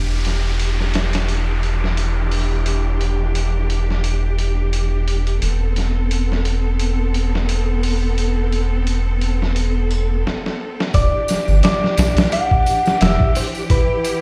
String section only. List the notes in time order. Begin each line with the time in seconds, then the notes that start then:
Already playing: E3 D4 G4
5.42 B3 C4 A4
10.94 E3 D4 G4
13.71 E4